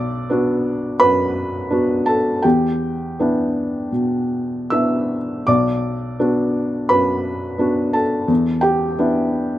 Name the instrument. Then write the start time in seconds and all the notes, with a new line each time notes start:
felt piano
Already playing: B1 D5 D6
0.30 B3 D4 F#4
1.00 F#2 B4 B5
1.71 B3 D4 F#4
2.06 A4 A5
2.42 E2 G4 G5
3.19 B3 D4 E4
3.92 B2
4.70 B3 D4 E4 E5 E6
5.47 B1 D5 D6
6.19 B3 D4 F#4
6.89 F#2 B4 B5
7.58 B3 D4 F#4
7.93 A4 A5
8.28 E2
8.61 G4 G5
8.99 B3 D4 E4